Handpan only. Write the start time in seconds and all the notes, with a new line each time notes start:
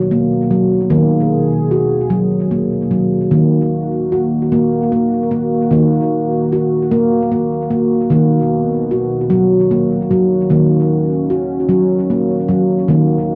Already playing: F#3 F#4
0.11 A#3
0.51 F#3
0.90 D#3 A#3
1.71 F#4
2.10 F#3
2.51 A#3
2.91 F#3
3.31 D#3 A#3
4.12 F#4
4.52 A#3
4.92 A#3
5.31 A#3
5.71 D#3 A#3
6.53 F#4
6.92 A#3
7.32 A#3
7.71 A#3
8.10 D#3 A#3
8.91 F#4
9.30 F#3
9.71 A#3
10.11 F#3
10.50 D#3 A#3
11.30 F#4
11.69 F#3
12.10 A#3
12.48 F#3
12.88 D#3 A#3